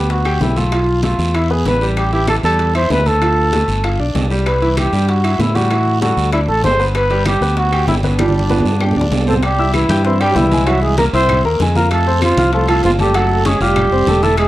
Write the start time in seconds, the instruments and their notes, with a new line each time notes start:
Already playing: fingered electric bass D2, grand piano B3 B4
0.10 trumpet F#4, high bongo, high conga, high timbale, long guiro
0.25 grand piano G4 G5, high bongo, high conga, high timbale, claves
0.41 fingered electric bass B1, trumpet E4, high bongo, low bongo, high conga, low timbale, short guiro
0.56 grand piano A3 A4, trumpet F4, high bongo, high conga, high timbale, short guiro
0.72 grand piano F3 F4, high bongo, high timbale, claves
0.87 high conga
1.03 grand piano A3 A4, trumpet F4, high bongo, high conga, high timbale, low timbale, short guiro
1.18 fingered electric bass E2, high bongo, high conga, short guiro
1.34 grand piano E4 E5, trumpet E4, high bongo, high conga, high timbale, claves
1.50 grand piano B3 B4, trumpet G#4, high bongo, high conga
1.65 fingered electric bass A1, trumpet B4, high bongo, low bongo, high conga, high timbale, low timbale, short guiro
1.81 grand piano G3 G4, high bongo, short guiro
1.97 trumpet G4, high bongo, high conga, high timbale, long guiro, claves
2.13 grand piano E3 E4, trumpet G4, high conga, high timbale
2.27 trumpet A4, high bongo, high conga, high timbale, low timbale, short guiro, claves
2.43 fingered electric bass E2, grand piano G3 G4, trumpet A4, high bongo, high conga, short guiro
2.59 high bongo, high conga, high timbale, long guiro
2.75 grand piano E4 E5, trumpet C5, high bongo, high conga, high timbale, claves
2.90 fingered electric bass D2, trumpet B4, high bongo, low bongo, high conga, low timbale, short guiro
3.06 grand piano A3 A4, trumpet A4, high bongo, high conga, high timbale, short guiro
3.22 grand piano F3 F4, high bongo, high conga, high timbale, long guiro, claves
3.38 high conga
3.53 grand piano A3 A4, high bongo, high conga, high timbale, low timbale, short guiro
3.68 fingered electric bass G1, high bongo, high conga, short guiro
3.84 grand piano F4 F5, high bongo, high conga, high timbale, long guiro, claves
3.99 fingered electric bass B1, grand piano D4 D5, high bongo, high conga
4.15 fingered electric bass C2, high bongo, low bongo, high conga, high timbale, low timbale, short guiro
4.30 grand piano G3 G4, high bongo, short guiro
4.46 trumpet B4, high bongo, high conga, high timbale, long guiro, claves
4.62 grand piano E3 E4, high conga, high timbale
4.77 trumpet G4, high bongo, high conga, high timbale, low timbale, short guiro, claves
4.92 fingered electric bass G2, grand piano G3 G4, high bongo, high conga, short guiro
5.08 trumpet F#4, high bongo, high conga, high timbale
5.24 grand piano E4 E5, high bongo, high conga, high timbale, claves
5.39 fingered electric bass A2, trumpet E4, high bongo, low bongo, high conga, low timbale, short guiro
5.55 grand piano G3 G4, trumpet F#4, high bongo, high conga, high timbale, short guiro
5.71 grand piano E3 E4, high bongo, high timbale, claves
5.87 high conga
6.02 grand piano G3 A4, trumpet F#4, high bongo, high conga, high timbale, low timbale, short guiro
6.17 fingered electric bass D2, high bongo, high conga, short guiro
6.32 grand piano D4 D5, trumpet E4, high bongo, high timbale, long guiro, claves
6.48 fingered electric bass A1, grand piano A3 A4, trumpet A4, high bongo, high conga
6.63 fingered electric bass G1, trumpet C5, high bongo, low bongo, high conga, high timbale, low timbale, short guiro
6.79 grand piano B3 B4, high bongo, short guiro
6.95 trumpet B4, high bongo, high conga, high timbale, long guiro, claves
7.10 grand piano G3 G4, high conga, high timbale
7.26 trumpet G4, high bongo, high conga, high timbale, low timbale, short guiro, claves
7.41 fingered electric bass D2, grand piano B3 B4, high bongo, high conga, short guiro
7.57 trumpet F#4, high bongo, high conga, high timbale, long guiro
7.72 grand piano G4 G5, high bongo, high conga, high timbale, claves
7.87 fingered electric bass G1, trumpet E4, high bongo, low bongo, high conga, low timbale, short guiro
8.03 grand piano B3 B4, trumpet D4, high bongo, high conga, high timbale, short guiro
8.19 grand piano G3 G4, high bongo, high conga, high timbale, long guiro, claves
8.29 high conga
8.39 high conga
8.49 grand piano B3 B4, high bongo, high conga, high timbale, short guiro
8.60 high conga, low timbale
8.65 fingered electric bass G2, high bongo, short guiro
8.71 low timbale
8.81 grand piano G4 G5, high bongo, low timbale, long guiro, claves
8.91 low conga, low timbale
8.96 fingered electric bass D2, grand piano D4 D5, high bongo
9.01 low conga
9.11 fingered electric bass C2, high bongo, low bongo, low timbale, short guiro
9.22 low timbale
9.27 trombone A3, grand piano C4 C5, trumpet A4, high bongo, short guiro
9.32 low conga, low timbale
9.43 trombone G3, trumpet G4, high bongo, high timbale, long guiro, claves
9.58 grand piano E4 E5 E6, high bongo, high conga
9.74 trombone E3, trumpet E4, high bongo, high conga, high timbale, short guiro, claves
9.89 fingered electric bass G2, grand piano G4 G5 G6, high conga, high timbale, short guiro
10.05 trombone E3, grand piano C4 C5 C6, trumpet E4, high bongo, high conga
10.20 trombone G3, grand piano G3 G4 G5, trumpet G4, high bongo, high conga, high timbale, claves
10.35 fingered electric bass C2, trombone E3, trumpet E4, high bongo, low bongo, high conga, low timbale, short guiro
10.51 grand piano G#3 G#4 G#5, high bongo, high conga, high timbale, short guiro
10.66 grand piano E3 E4 E5, trombone F#3, trumpet F#4, high bongo, high conga, high timbale, claves
10.82 trombone G#3, trumpet G#4, high bongo, high conga
10.98 trombone A#3, grand piano A#3 A#4 A#5, trumpet A#4, high bongo, high conga, high timbale, short guiro
11.13 fingered electric bass C2, trombone C4, grand piano E4 E5 E6, trumpet C5, high conga, high timbale, short guiro
11.29 high bongo, high conga, low conga, high timbale, long guiro, claves
11.44 fingered electric bass D#2, grand piano A#3 A#4 A#5, high bongo, high conga
11.60 fingered electric bass F2, grand piano G#3 G#4 G#5, high bongo, low bongo, high conga, high timbale, short guiro
11.75 trombone A#3, grand piano F4 F5 F6, trumpet A#4, high bongo, high conga, short guiro
11.91 trombone A3, trumpet A4, high bongo, high conga, high timbale, long guiro, claves
12.06 grand piano C4 C5 C6, high bongo, high conga
12.22 trombone F3, trumpet F4, high bongo, high conga, high timbale, short guiro, claves
12.37 fingered electric bass C2, grand piano F4 F5 F6, high conga, high timbale, short guiro
12.53 trombone F3, grand piano A3 A4 A5, trumpet F4, high bongo, high conga, long guiro
12.68 grand piano F3 F4 F5, trombone A3, trumpet A4, high bongo, high conga, high timbale, claves
12.83 fingered electric bass F#1, trombone F3, trumpet F4, high bongo, low bongo, high conga, low timbale, short guiro
12.99 trombone G3, grand piano A3 A4 A5, trumpet G4, high bongo, high conga, high timbale, short guiro
13.14 grand piano F#3 F#4 F#5, trombone A3, trumpet A4, high bongo, high timbale, long guiro, claves
13.30 high bongo, high conga
13.45 trombone G#3, grand piano C#4 C#5 C#6, trumpet G#4, high bongo, high conga, high timbale, short guiro
13.60 fingered electric bass F1, trombone G3, grand piano F4 F5 F6, trumpet G4, high timbale, short guiro
13.76 high bongo, high conga, low conga, high timbale, long guiro, claves
13.91 fingered electric bass F1, grand piano C4 C5 C6, high bongo, high conga
14.07 fingered electric bass E1, grand piano A3 A4 A5, high bongo, low bongo, high conga, high timbale, short guiro
14.22 trombone A3, grand piano E4 E5 E6, trumpet A4, high bongo, high conga, short guiro
14.38 trombone G#3, trumpet G#4, high bongo, high conga, high timbale, long guiro, claves